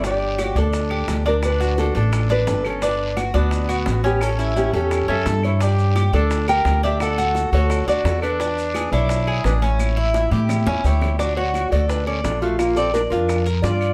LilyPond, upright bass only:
\new Staff \with { instrumentName = "Upright bass" } { \clef bass \time 4/4 \key d \major \tempo 4 = 172 g,,4. d,4. d,4~ | d,4. a,,4. g,,4~ | g,,4. d,4. a,,4~ | a,,4. e,4 fis,8 g,4~ |
g,4. d,4. d,4~ | d,4. d,4 d,8 e,4~ | e,4. b,,4. a,,4~ | a,,4. a,4 e,8 d,4~ |
d,4. d,4. bes,,4~ | bes,,4. f,4. g,4 | }